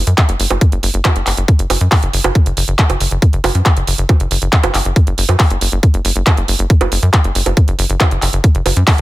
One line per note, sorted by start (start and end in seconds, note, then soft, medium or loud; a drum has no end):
0.07 0.14 F#2 medium
0.07 closed hi-hat medium
0.18 kick loud
0.18 clap loud
0.18 closed hi-hat medium
0.29 0.36 F#1 medium
0.29 closed hi-hat medium
0.40 0.47 F#1 loud
0.40 open hi-hat loud
0.50 0.57 F#1 medium
0.50 closed hi-hat medium
0.50 high bongo soft
0.61 kick loud
0.61 closed hi-hat medium
0.72 0.79 F#1 medium
0.72 closed hi-hat medium
0.83 0.90 F#1 loud
0.83 open hi-hat loud
0.94 1.01 F#1 medium
0.94 closed hi-hat medium
1.05 kick loud
1.05 clap loud
1.05 closed hi-hat medium
1.05 high bongo medium
1.16 1.23 F#1 medium
1.16 closed hi-hat medium
1.27 1.34 F#1 medium
1.27 clap medium
1.27 open hi-hat loud
1.37 1.44 F#1 medium
1.37 closed hi-hat medium
1.48 kick loud
1.48 closed hi-hat medium
1.59 1.66 F#1 medium
1.59 closed hi-hat medium
1.70 1.77 F#1 loud
1.70 open hi-hat loud
1.70 high bongo soft
1.81 1.88 F#2 medium
1.81 closed hi-hat medium
1.92 kick loud
1.92 clap loud
1.92 open hi-hat medium
2.03 2.10 F#1 medium
2.03 closed hi-hat medium
2.13 2.21 F#1 loud
2.13 open hi-hat loud
2.24 2.31 F#1 medium
2.24 closed hi-hat medium
2.24 high bongo medium
2.35 kick loud
2.35 closed hi-hat medium
2.46 2.53 F#1 medium
2.46 closed hi-hat medium
2.57 2.64 F#1 loud
2.57 open hi-hat loud
2.68 2.75 F#1 medium
2.68 closed hi-hat medium
2.79 kick loud
2.79 clap loud
2.79 closed hi-hat medium
2.90 2.97 F#1 medium
2.90 closed hi-hat medium
2.90 high bongo soft
3.00 3.08 F#1 loud
3.00 open hi-hat loud
3.11 3.18 F#1 medium
3.11 closed hi-hat medium
3.22 kick loud
3.22 closed hi-hat medium
3.33 3.40 F#1 medium
3.33 closed hi-hat medium
3.44 3.51 F#1 loud
3.44 open hi-hat loud
3.44 high bongo medium
3.55 3.62 F#2 medium
3.55 closed hi-hat medium
3.66 kick loud
3.66 clap loud
3.66 closed hi-hat medium
3.77 3.84 F#1 medium
3.77 closed hi-hat medium
3.87 3.94 F#1 loud
3.87 open hi-hat loud
3.98 4.05 F#1 medium
3.98 closed hi-hat medium
4.09 kick loud
4.09 closed hi-hat medium
4.09 high bongo soft
4.20 4.27 F#1 medium
4.20 closed hi-hat medium
4.31 4.38 F#1 loud
4.31 open hi-hat loud
4.42 4.49 F#1 medium
4.42 closed hi-hat medium
4.53 kick loud
4.53 clap loud
4.53 closed hi-hat medium
4.63 4.71 F#1 medium
4.63 closed hi-hat medium
4.63 high bongo medium
4.74 4.81 F#1 loud
4.74 clap medium
4.74 open hi-hat loud
4.85 4.92 F#1 medium
4.85 closed hi-hat medium
4.96 kick loud
4.96 closed hi-hat medium
5.07 5.14 F#1 medium
5.07 closed hi-hat medium
5.18 5.25 F#1 loud
5.18 open hi-hat loud
5.29 5.36 F#2 medium
5.29 closed hi-hat medium
5.29 high bongo soft
5.40 kick loud
5.40 clap loud
5.40 open hi-hat medium
5.50 5.58 F#1 medium
5.50 closed hi-hat medium
5.61 5.68 F#1 loud
5.61 open hi-hat loud
5.72 5.79 F#1 medium
5.72 closed hi-hat medium
5.83 kick loud
5.83 closed hi-hat medium
5.94 6.01 F#1 medium
5.94 closed hi-hat medium
6.05 6.12 F#1 loud
6.05 open hi-hat loud
6.16 6.23 F#1 medium
6.16 closed hi-hat medium
6.27 kick loud
6.27 clap loud
6.27 closed hi-hat medium
6.27 high bongo soft
6.37 6.44 F#1 medium
6.37 closed hi-hat medium
6.48 6.55 F#1 loud
6.48 open hi-hat loud
6.59 6.66 F#1 medium
6.59 closed hi-hat medium
6.70 kick loud
6.70 closed hi-hat medium
6.81 6.88 F#1 medium
6.81 closed hi-hat medium
6.81 high bongo medium
6.92 6.99 F#1 loud
6.92 open hi-hat loud
7.03 7.10 F#2 medium
7.03 closed hi-hat medium
7.13 kick loud
7.13 clap loud
7.13 closed hi-hat medium
7.24 7.31 F#1 medium
7.24 closed hi-hat medium
7.35 7.42 F#1 loud
7.35 open hi-hat loud
7.46 7.53 F#1 loud
7.46 closed hi-hat medium
7.46 high bongo soft
7.57 kick loud
7.57 closed hi-hat medium
7.68 7.75 F#1 medium
7.68 closed hi-hat medium
7.79 7.86 F#1 loud
7.79 open hi-hat loud
7.90 7.97 F#1 medium
7.90 closed hi-hat medium
8.00 kick loud
8.00 clap loud
8.00 closed hi-hat medium
8.00 high bongo medium
8.11 8.18 F#1 medium
8.11 closed hi-hat medium
8.22 8.29 F#1 loud
8.22 clap medium
8.22 open hi-hat loud
8.33 8.40 F#1 medium
8.33 closed hi-hat medium
8.44 kick loud
8.44 closed hi-hat medium
8.55 8.62 F#1 medium
8.55 closed hi-hat medium
8.66 8.73 F#1 loud
8.66 open hi-hat loud
8.66 high bongo soft
8.76 8.84 F#2 medium
8.76 closed hi-hat medium
8.87 kick loud
8.87 clap loud
8.87 open hi-hat medium